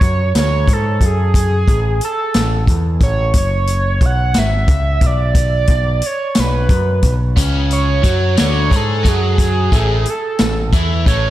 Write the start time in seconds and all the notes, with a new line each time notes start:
Already playing: C#5
0.01 F#2, kick, closed hi-hat
0.35 D2 C#5, snare, closed hi-hat
0.68 G#2, kick, closed hi-hat
0.73 A4
1.01 F#2, kick, closed hi-hat
1.06 G#4
1.34 kick, closed hi-hat
1.68 A1, kick, closed hi-hat
2.01 A4, closed hi-hat
2.34 A1, snare, closed hi-hat
2.67 E2, kick, closed hi-hat
3.01 A1 C#5, kick, closed hi-hat
3.33 F#1, kick, closed hi-hat
3.38 C#5
3.67 closed hi-hat
4.01 B1, kick, closed hi-hat
4.05 F#5
4.34 G#1, snare, closed hi-hat
4.38 E5
4.68 C#2, kick, closed hi-hat
5.01 B1, kick, closed hi-hat
5.06 D5
5.35 kick, closed hi-hat
5.67 B1, kick, closed hi-hat
6.02 closed hi-hat
6.06 C#5
6.35 B1, snare, closed hi-hat
6.40 B4
6.69 F#2, kick, closed hi-hat
7.02 B1, kick, closed hi-hat
7.36 C#2 C#3 C#4, kick, closed hi-hat
7.71 C#5, closed hi-hat
8.03 F#2 F#3 F#4, kick, closed hi-hat
8.36 D2 D3 D4 C#5, snare, closed hi-hat
8.70 G#2 G#3 G#4, kick, closed hi-hat
8.76 A4
9.03 F#2 F#3 F#4, kick, closed hi-hat
9.08 G#4
9.38 kick, closed hi-hat
9.72 A1 A2 A3, kick, closed hi-hat
10.05 closed hi-hat
10.10 A4
10.39 A1 A2, snare, closed hi-hat
10.73 E2 E3 E4, kick, closed hi-hat
11.06 A1 A2 A3 C#5, kick, closed hi-hat